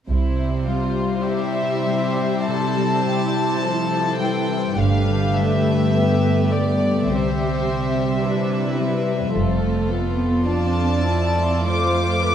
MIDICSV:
0, 0, Header, 1, 7, 480
1, 0, Start_track
1, 0, Key_signature, 0, "major"
1, 0, Tempo, 1160542
1, 37, Time_signature, 4, 2, 24, 8
1, 517, Tempo, 1221996
1, 997, Tempo, 1160542
1, 2437, Tempo, 1127820
1, 4357, Tempo, 1190476
1, 4837, Tempo, 1121495
1, 5133, End_track
2, 0, Start_track
2, 0, Title_t, "Violin section"
2, 0, Program_c, 0, 48
2, 517, Note_on_c, 0, 76, 50
2, 981, Note_off_c, 0, 76, 0
2, 997, Note_on_c, 0, 81, 60
2, 1696, Note_off_c, 0, 81, 0
2, 1712, Note_on_c, 0, 79, 46
2, 1954, Note_on_c, 0, 77, 48
2, 1955, Note_off_c, 0, 79, 0
2, 2194, Note_on_c, 0, 76, 56
2, 2197, Note_off_c, 0, 77, 0
2, 2675, Note_off_c, 0, 76, 0
2, 2675, Note_on_c, 0, 74, 46
2, 2918, Note_off_c, 0, 74, 0
2, 2919, Note_on_c, 0, 76, 50
2, 3860, Note_off_c, 0, 76, 0
2, 4357, Note_on_c, 0, 81, 55
2, 4821, Note_off_c, 0, 81, 0
2, 4838, Note_on_c, 0, 86, 65
2, 5133, Note_off_c, 0, 86, 0
2, 5133, End_track
3, 0, Start_track
3, 0, Title_t, "Violin section"
3, 0, Program_c, 1, 48
3, 39, Note_on_c, 1, 64, 41
3, 43, Note_on_c, 1, 72, 38
3, 261, Note_off_c, 1, 64, 0
3, 278, Note_on_c, 1, 65, 38
3, 515, Note_on_c, 1, 67, 42
3, 517, Note_off_c, 1, 65, 0
3, 750, Note_off_c, 1, 67, 0
3, 755, Note_on_c, 1, 67, 43
3, 992, Note_off_c, 1, 67, 0
3, 998, Note_on_c, 1, 69, 38
3, 1237, Note_on_c, 1, 67, 42
3, 1238, Note_off_c, 1, 69, 0
3, 1467, Note_off_c, 1, 67, 0
3, 1479, Note_on_c, 1, 69, 41
3, 1940, Note_off_c, 1, 72, 0
3, 1958, Note_off_c, 1, 69, 0
3, 1963, Note_on_c, 1, 67, 37
3, 1964, Note_on_c, 1, 71, 38
3, 2431, Note_off_c, 1, 71, 0
3, 2442, Note_on_c, 1, 71, 41
3, 2676, Note_off_c, 1, 71, 0
3, 2679, Note_on_c, 1, 74, 43
3, 2906, Note_off_c, 1, 67, 0
3, 2919, Note_off_c, 1, 74, 0
3, 2924, Note_on_c, 1, 67, 38
3, 2926, Note_on_c, 1, 72, 38
3, 3397, Note_off_c, 1, 67, 0
3, 3408, Note_off_c, 1, 72, 0
3, 3411, Note_on_c, 1, 64, 40
3, 3411, Note_on_c, 1, 71, 39
3, 3881, Note_off_c, 1, 64, 0
3, 3881, Note_off_c, 1, 71, 0
3, 3883, Note_on_c, 1, 65, 40
3, 3887, Note_on_c, 1, 69, 38
3, 4352, Note_off_c, 1, 69, 0
3, 4359, Note_on_c, 1, 74, 41
3, 4829, Note_off_c, 1, 74, 0
3, 4841, Note_on_c, 1, 72, 42
3, 5080, Note_off_c, 1, 72, 0
3, 5082, Note_on_c, 1, 71, 43
3, 5133, Note_off_c, 1, 65, 0
3, 5133, Note_off_c, 1, 71, 0
3, 5133, End_track
4, 0, Start_track
4, 0, Title_t, "Harp"
4, 0, Program_c, 2, 46
4, 37, Note_on_c, 2, 48, 37
4, 156, Note_on_c, 2, 60, 27
4, 278, Note_on_c, 2, 55, 28
4, 395, Note_on_c, 2, 67, 30
4, 514, Note_on_c, 2, 72, 34
4, 629, Note_off_c, 2, 67, 0
4, 634, Note_on_c, 2, 67, 31
4, 751, Note_off_c, 2, 55, 0
4, 756, Note_on_c, 2, 55, 31
4, 874, Note_off_c, 2, 60, 0
4, 879, Note_on_c, 2, 60, 27
4, 994, Note_off_c, 2, 48, 0
4, 998, Note_on_c, 2, 48, 34
4, 1114, Note_off_c, 2, 55, 0
4, 1119, Note_on_c, 2, 55, 28
4, 1231, Note_off_c, 2, 60, 0
4, 1236, Note_on_c, 2, 60, 28
4, 1352, Note_off_c, 2, 67, 0
4, 1357, Note_on_c, 2, 67, 30
4, 1468, Note_off_c, 2, 72, 0
4, 1473, Note_on_c, 2, 72, 30
4, 1584, Note_off_c, 2, 67, 0
4, 1589, Note_on_c, 2, 67, 30
4, 1706, Note_off_c, 2, 55, 0
4, 1711, Note_on_c, 2, 55, 30
4, 1828, Note_off_c, 2, 60, 0
4, 1833, Note_on_c, 2, 60, 31
4, 1954, Note_on_c, 2, 43, 39
4, 1974, Note_off_c, 2, 48, 0
4, 1974, Note_off_c, 2, 60, 0
4, 1974, Note_off_c, 2, 72, 0
4, 2075, Note_on_c, 2, 50, 27
4, 2193, Note_off_c, 2, 55, 0
4, 2198, Note_on_c, 2, 55, 30
4, 2311, Note_off_c, 2, 67, 0
4, 2316, Note_on_c, 2, 67, 29
4, 2437, Note_on_c, 2, 71, 34
4, 2551, Note_off_c, 2, 67, 0
4, 2556, Note_on_c, 2, 67, 30
4, 2673, Note_off_c, 2, 55, 0
4, 2678, Note_on_c, 2, 55, 33
4, 2797, Note_off_c, 2, 50, 0
4, 2802, Note_on_c, 2, 50, 27
4, 2923, Note_on_c, 2, 48, 38
4, 2938, Note_off_c, 2, 43, 0
4, 2939, Note_off_c, 2, 71, 0
4, 2941, Note_off_c, 2, 50, 0
4, 3044, Note_on_c, 2, 60, 30
4, 3160, Note_off_c, 2, 55, 0
4, 3165, Note_on_c, 2, 55, 26
4, 3281, Note_off_c, 2, 67, 0
4, 3286, Note_on_c, 2, 67, 31
4, 3409, Note_on_c, 2, 72, 32
4, 3524, Note_off_c, 2, 67, 0
4, 3530, Note_on_c, 2, 67, 31
4, 3642, Note_off_c, 2, 55, 0
4, 3647, Note_on_c, 2, 55, 31
4, 3759, Note_off_c, 2, 60, 0
4, 3764, Note_on_c, 2, 60, 28
4, 3883, Note_on_c, 2, 53, 38
4, 3898, Note_off_c, 2, 48, 0
4, 3899, Note_off_c, 2, 55, 0
4, 3900, Note_off_c, 2, 67, 0
4, 3999, Note_on_c, 2, 57, 27
4, 4119, Note_on_c, 2, 65, 32
4, 4239, Note_on_c, 2, 69, 30
4, 4357, Note_off_c, 2, 65, 0
4, 4362, Note_on_c, 2, 65, 37
4, 4477, Note_off_c, 2, 69, 0
4, 4481, Note_on_c, 2, 69, 31
4, 4596, Note_off_c, 2, 65, 0
4, 4601, Note_on_c, 2, 65, 35
4, 4719, Note_off_c, 2, 57, 0
4, 4724, Note_on_c, 2, 57, 29
4, 4839, Note_off_c, 2, 53, 0
4, 4844, Note_on_c, 2, 53, 35
4, 4958, Note_off_c, 2, 65, 0
4, 4963, Note_on_c, 2, 65, 30
4, 5043, Note_off_c, 2, 72, 0
4, 5076, Note_off_c, 2, 57, 0
4, 5081, Note_on_c, 2, 57, 31
4, 5133, Note_off_c, 2, 53, 0
4, 5133, Note_off_c, 2, 57, 0
4, 5133, Note_off_c, 2, 60, 0
4, 5133, Note_off_c, 2, 65, 0
4, 5133, Note_off_c, 2, 69, 0
4, 5133, End_track
5, 0, Start_track
5, 0, Title_t, "Viola section"
5, 0, Program_c, 3, 48
5, 34, Note_on_c, 3, 60, 41
5, 37, Note_on_c, 3, 55, 40
5, 499, Note_off_c, 3, 60, 0
5, 516, Note_on_c, 3, 64, 40
5, 1455, Note_off_c, 3, 55, 0
5, 1469, Note_on_c, 3, 53, 41
5, 1709, Note_off_c, 3, 53, 0
5, 1713, Note_on_c, 3, 52, 39
5, 1937, Note_off_c, 3, 64, 0
5, 1950, Note_off_c, 3, 52, 0
5, 1954, Note_on_c, 3, 57, 44
5, 1956, Note_on_c, 3, 62, 39
5, 2427, Note_off_c, 3, 62, 0
5, 2437, Note_on_c, 3, 59, 39
5, 2910, Note_off_c, 3, 59, 0
5, 2919, Note_off_c, 3, 57, 0
5, 2922, Note_on_c, 3, 60, 39
5, 2923, Note_on_c, 3, 55, 39
5, 3158, Note_off_c, 3, 55, 0
5, 3163, Note_on_c, 3, 55, 40
5, 3402, Note_on_c, 3, 62, 41
5, 3406, Note_off_c, 3, 60, 0
5, 3635, Note_off_c, 3, 62, 0
5, 3639, Note_on_c, 3, 60, 43
5, 3864, Note_off_c, 3, 55, 0
5, 3871, Note_off_c, 3, 60, 0
5, 3874, Note_on_c, 3, 57, 43
5, 3876, Note_on_c, 3, 60, 41
5, 4108, Note_off_c, 3, 57, 0
5, 4113, Note_on_c, 3, 59, 40
5, 4347, Note_off_c, 3, 60, 0
5, 4355, Note_on_c, 3, 60, 43
5, 4356, Note_off_c, 3, 59, 0
5, 4356, Note_on_c, 3, 62, 45
5, 4597, Note_off_c, 3, 62, 0
5, 4598, Note_on_c, 3, 64, 45
5, 4836, Note_off_c, 3, 60, 0
5, 4837, Note_on_c, 3, 65, 42
5, 4838, Note_off_c, 3, 64, 0
5, 4840, Note_on_c, 3, 57, 41
5, 5133, Note_off_c, 3, 57, 0
5, 5133, Note_off_c, 3, 65, 0
5, 5133, End_track
6, 0, Start_track
6, 0, Title_t, "Cello section"
6, 0, Program_c, 4, 48
6, 34, Note_on_c, 4, 48, 36
6, 1936, Note_off_c, 4, 48, 0
6, 1956, Note_on_c, 4, 43, 37
6, 2903, Note_off_c, 4, 43, 0
6, 2917, Note_on_c, 4, 48, 39
6, 3860, Note_off_c, 4, 48, 0
6, 3878, Note_on_c, 4, 41, 39
6, 5133, Note_off_c, 4, 41, 0
6, 5133, End_track
7, 0, Start_track
7, 0, Title_t, "Double bass section"
7, 0, Program_c, 5, 48
7, 35, Note_on_c, 5, 36, 41
7, 499, Note_off_c, 5, 36, 0
7, 1955, Note_on_c, 5, 31, 38
7, 2419, Note_off_c, 5, 31, 0
7, 2922, Note_on_c, 5, 36, 35
7, 3389, Note_off_c, 5, 36, 0
7, 3880, Note_on_c, 5, 29, 38
7, 4341, Note_off_c, 5, 29, 0
7, 5133, End_track
0, 0, End_of_file